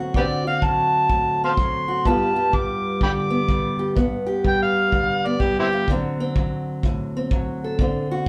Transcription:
Already playing: steel-string acoustic guitar A2 D3 F#3 C4 F#4
0.14 steel-string acoustic guitar D3 C4, harmonica G4 B4 D5, kick
0.47 steel-string acoustic guitar F#4, harmonica F5
0.62 steel-string acoustic guitar F#3, harmonica A5, kick
1.10 steel-string acoustic guitar A2, kick
1.44 steel-string acoustic guitar C4, harmonica F5 A5 C6
1.57 steel-string acoustic guitar F#3, kick
1.88 steel-string acoustic guitar F#4
2.05 steel-string acoustic guitar G2 G3 B3 F4 G4, harmonica A5, kick
2.36 steel-string acoustic guitar G4
2.52 steel-string acoustic guitar G3, harmonica D6, kick
3.01 steel-string acoustic guitar D3, harmonica G5 B5 D6, kick
3.30 steel-string acoustic guitar B3
3.49 steel-string acoustic guitar G3, kick
3.79 steel-string acoustic guitar G4
3.95 steel-string acoustic guitar G2 B3, kick
4.26 steel-string acoustic guitar G4
4.44 steel-string acoustic guitar G3, harmonica G5, kick
4.63 harmonica F5
4.92 steel-string acoustic guitar D3, kick
5.26 steel-string acoustic guitar B3, harmonica D5
5.40 steel-string acoustic guitar G3, harmonica G4, kick
5.59 harmonica C4 E4 G4
5.73 steel-string acoustic guitar F4
5.88 steel-string acoustic guitar D3 F#3 C4, kick
6.20 steel-string acoustic guitar C4
6.36 steel-string acoustic guitar F#3, kick
6.83 steel-string acoustic guitar A2, kick
7.17 steel-string acoustic guitar C4
7.31 steel-string acoustic guitar F#3, kick
7.64 steel-string acoustic guitar A4
7.79 steel-string acoustic guitar D3 C4, kick
8.11 steel-string acoustic guitar F#4

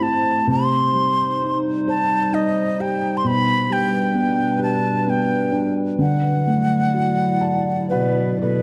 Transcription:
Already playing: felt piano A2 E3 C4 G4, ambient pad A3 G4 C5
0.00 felt piano E4, flute A5
0.47 felt piano C3, ambient pad G3 D#4 C5, flute C6
0.94 felt piano G3
1.42 felt piano D#4
1.88 felt piano C5, flute A5
2.32 felt piano D#4, flute D#5
2.80 felt piano G4, flute G5
3.17 flute C6
3.24 felt piano B2, ambient pad B2 G3 D4 B4, flute B5
3.70 felt piano G3, flute G5
4.14 felt piano B3
4.59 felt piano G4
4.63 flute A5
5.07 felt piano B3, flute G5
5.52 felt piano D4
5.99 felt piano D3, ambient pad F#3 E4 D5, flute F#5
6.47 felt piano A3
6.94 felt piano F#4
7.41 felt piano D5 A5
7.89 cello B2, felt piano F#4 F#5, flute B4
8.41 cello B2, felt piano A4 D5, flute B4

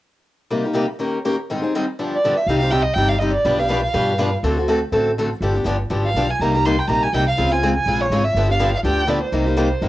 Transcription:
0.50 steel-string acoustic guitar C3 G3 A#3 D#4 G4
0.64 steel-string acoustic guitar A#3 D#4 G4
0.73 steel-string acoustic guitar C3 G3 A#3 D#4 G4
0.99 steel-string acoustic guitar D#3 A#3 C#4 G4 A#4
1.25 steel-string acoustic guitar D#3 A#3 C#4 G4 A#4
1.50 steel-string acoustic guitar G#2 D#3 G3 C4 D#4 G#4
1.62 steel-string acoustic guitar G3 C4 D#4 G#4
1.75 steel-string acoustic guitar G#2 D#3 G3 C4 D#4 G#4
1.99 steel-string acoustic guitar G2 D3 F3 B3 D4 G4
2.15 violin D5
2.24 steel-string acoustic guitar G2 D3 F3 B3 D4 G4
2.36 violin E5
2.47 upright bass C2, steel-string acoustic guitar C3 G3 C4 D#4 G4, violin F5
2.59 steel-string acoustic guitar C4 D#4 G4, violin F5
2.71 steel-string acoustic guitar C3 G3 C4 D#4 G4, violin G5
2.83 violin D#5
2.94 upright bass G1, steel-string acoustic guitar C3 C4, violin G5
2.98 steel-string acoustic guitar G3 D#4 G4
3.09 violin F5
3.18 steel-string acoustic guitar C3 G3 C4 D#4 G4, violin D#5
3.33 violin D5
3.45 upright bass B1, steel-string acoustic guitar B2 F3 B3 D4 G4 B4
3.59 steel-string acoustic guitar B3 D4 G4 B4, violin F5
3.69 steel-string acoustic guitar B2 F3 B3 D4 G4 B4
3.83 violin F5
3.94 upright bass G2, steel-string acoustic guitar B2 F3 B3 D4 G4 B4
4.18 steel-string acoustic guitar B2 F3 B3 D4 G4 B4
4.43 upright bass D2, steel-string acoustic guitar D3 A3 C4 F#4 A4
4.57 steel-string acoustic guitar C4 F#4 A4
4.68 steel-string acoustic guitar D3 A3 C4 F#4 A4
4.92 upright bass A1, steel-string acoustic guitar D3 A3 C4 F#4 A4
5.18 steel-string acoustic guitar D3 A3 C4 F#4 A4
5.40 upright bass G1, steel-string acoustic guitar D3 F3 B3 D4 G4
5.54 steel-string acoustic guitar B3 D4 G4
5.64 upright bass G1, steel-string acoustic guitar D3 F3 B3 D4 G4
5.90 upright bass G#1, steel-string acoustic guitar D3 F3 B3 D4 G4
6.06 violin F5
6.14 upright bass B1, steel-string acoustic guitar D3 F3 B3 D4 G4
6.30 violin G#5
6.40 upright bass C2, steel-string acoustic guitar C3 G3 A#3 D#4 G4, violin A#5
6.54 steel-string acoustic guitar A#3 D#4 G4, violin A#5
6.65 steel-string acoustic guitar C3 G3 A#3 D#4 G4, violin C6
6.79 violin G5
6.88 upright bass A#1, steel-string acoustic guitar C3 G3 A#3 D#4 G4, violin A#5
7.03 violin G#5
7.13 upright bass C2, steel-string acoustic guitar C3 G3 A#3 D#4 G4, violin G5
7.28 violin F5
7.37 upright bass C#2, steel-string acoustic guitar C#3 G#3 C4 F4 G#4
7.51 steel-string acoustic guitar C4 F4 G#4, violin G#5
7.63 steel-string acoustic guitar C#3 G#3 C4 F4 G#4
7.76 violin G#5
7.86 upright bass A#1, steel-string acoustic guitar C#3 G#3 C4 F4 G#4
8.01 violin C#5
8.10 upright bass G#1, steel-string acoustic guitar C#3 G#3 C4 F4 G#4
8.24 violin E5
8.35 upright bass G1, steel-string acoustic guitar D3 F3 B3 D4 G4
8.49 steel-string acoustic guitar B3 D4 G4, violin F5
8.59 steel-string acoustic guitar D3 F3 B3 D4 G4
8.75 violin F5
8.83 upright bass D2, steel-string acoustic guitar D3 F3 B3 D4 G4, violin G5
9.07 steel-string acoustic guitar D3 F3 B3 D4 G4, violin D5
9.24 violin C5
9.32 upright bass C2, steel-string acoustic guitar C3 G3 A#3 D#4 G4
9.46 steel-string acoustic guitar A#3 D#4 G4
9.56 steel-string acoustic guitar C3 G3 A#3 D#4 G4
9.81 upright bass G1, steel-string acoustic guitar C3 G3 A#3 D#4 G4

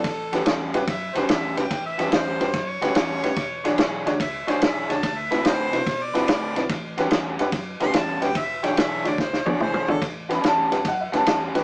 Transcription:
Already playing: harmonica A4
0.04 fingered electric bass A1, kick, snare, ride
0.32 fingered electric bass E2, overdriven electric guitar A2 G3 C#4 F#4, upright piano C#4 F#4 G4 B4, snare, ride
0.45 fingered electric bass E2, overdriven electric guitar A2 G3 C#4 F#4, snare, ride
0.74 fingered electric bass G2, upright piano C#4 F#4 G4 B4, snare, ride
0.87 fingered electric bass F#2, harmonica E5, kick, snare, ride
1.15 fingered electric bass D2, overdriven electric guitar A2 G3 C#4 F#4, upright piano C#4 F#4 G4 B4, harmonica C5, snare, ride
1.29 fingered electric bass E2, overdriven electric guitar A2 G3 C#4 F#4, harmonica E5, snare, ride
1.57 fingered electric bass C#2, upright piano C#4 F#4 G4 B4, harmonica G5, snare, ride
1.70 fingered electric bass A1, kick, snare, ride
1.86 harmonica E5
1.98 fingered electric bass E2, overdriven electric guitar A2 G3 C#4 F#4, upright piano C#4 F#4 G4 B4, snare, ride
2.11 fingered electric bass E2, overdriven electric guitar A2 G3 C#4 F#4, harmonica C5, snare, ride
2.40 fingered electric bass G2, upright piano C#4 F#4 G4 B4, snare, ride
2.53 fingered electric bass F#2, kick, snare, ride
2.69 harmonica C#5
2.82 fingered electric bass D2, overdriven electric guitar A2 G3 C#4 F#4, upright piano C#4 F#4 G4 B4, snare, ride
2.95 fingered electric bass E2, overdriven electric guitar A2 G3 C#4 F#4, snare, ride
3.23 fingered electric bass F#1, upright piano C#4 F#4 G4 B4, snare, ride
3.36 fingered electric bass E1, kick, snare, ride
3.64 fingered electric bass B1, overdriven electric guitar E3 D4 G#4 C#5, upright piano D4 F#4 G#4 C#5, snare, ride
3.78 fingered electric bass B1, overdriven electric guitar E3 D4 G#4 C#5, snare, ride
4.06 fingered electric bass D2, upright piano D4 F#4 G#4 C#5, snare, ride
4.20 fingered electric bass C#2, harmonica E5, kick, snare, ride
4.47 fingered electric bass A1, overdriven electric guitar E3 D4 G#4 C#5, upright piano D4 F#4 G#4 C#5, harmonica C5, snare, ride
4.60 fingered electric bass B1, overdriven electric guitar E3 D4 G#4 C#5, harmonica E5, snare, ride
4.89 fingered electric bass C#2, upright piano D4 F#4 G#4 C#5, harmonica A5, snare, ride
5.03 fingered electric bass D2, kick, snare, ride
5.18 harmonica E5
5.31 fingered electric bass A2, overdriven electric guitar D3 C4 F#4 B4, upright piano C4 E4 F#4 B4, snare, ride
5.44 fingered electric bass A2, overdriven electric guitar D3 C4 F#4 B4, harmonica C5, snare, ride
5.73 fingered electric bass C3, upright piano C4 E4 F#4 B4, snare, ride
5.87 fingered electric bass B2, kick, snare, ride
6.03 harmonica D5
6.14 fingered electric bass G2, overdriven electric guitar D3 C4 F#4 B4, upright piano C4 E4 F#4 B4, snare, ride
6.27 fingered electric bass A2, overdriven electric guitar D3 C4 F#4 B4, snare, ride
6.56 fingered electric bass B1, upright piano C4 E4 F#4 B4, snare, ride
6.69 fingered electric bass A1, kick, snare, ride
6.97 fingered electric bass E2, overdriven electric guitar A2 G3 C#4 F#4, upright piano C#4 F#4 G4 B4, snare, ride
7.11 fingered electric bass E2, overdriven electric guitar A2 G3 C#4 F#4, snare, ride
7.39 fingered electric bass G2, upright piano C#4 F#4 G4 B4, snare, ride
7.52 fingered electric bass F#2, kick, snare, ride
7.80 fingered electric bass D2, overdriven electric guitar A2 G3 C#4 F#4, upright piano C#4 F#4 G4 B4, harmonica C6, snare, ride
7.93 fingered electric bass E2, overdriven electric guitar A2 G3 C#4 F#4, harmonica A5, snare, ride
8.21 fingered electric bass D2, upright piano C#4 F#4 G4 B4, harmonica G5, snare, ride
8.35 fingered electric bass E1, harmonica E5, kick, snare, ride
8.63 fingered electric bass B1, overdriven electric guitar E3 D4 G#4 C#5, upright piano D4 F#4 G#4 C#5, harmonica G5, snare, ride
8.76 fingered electric bass B1, overdriven electric guitar E3 D4 G#4 C#5, harmonica E5, snare, ride
9.04 fingered electric bass D2, upright piano D4 F#4 G#4 C#5, harmonica D5, snare, ride
9.18 fingered electric bass C#2, harmonica C5, kick, snare
9.33 snare
9.46 fingered electric bass A1, overdriven electric guitar E3 D4 G#4 C#5, upright piano D4 F#4 G#4 C#5, harmonica D5, high tom
9.60 fingered electric bass B1, overdriven electric guitar E3 D4 G#4 C#5, harmonica C5, mid tom
9.74 mid tom
9.88 fingered electric bass G#1, upright piano D4 F#4 G#4 C#5, harmonica A4, floor tom
10.02 fingered electric bass A1, kick, snare, ride
10.29 fingered electric bass E2, overdriven electric guitar A2 G3 C#4 F#4, upright piano C#4 F#4 G4 B4 B5, snare, ride
10.41 fingered electric bass E2, overdriven electric guitar A2 G3 C#4 F#4, upright piano G#5, snare, ride
10.46 upright piano A5
10.71 fingered electric bass G2, upright piano C#4 F#4 G4 B4, snare, ride
10.85 fingered electric bass F#2, upright piano F#5, kick, snare, ride
11.01 upright piano E5
11.12 fingered electric bass D2, overdriven electric guitar A2 G3 C#4 F#4, upright piano C#4 F#4 G4 B4 A5, snare, ride
11.26 fingered electric bass E2, overdriven electric guitar A2 G3 C#4 F#4, snare, ride
11.54 fingered electric bass E2, upright piano C#4 F#4 G4 B4, snare, ride

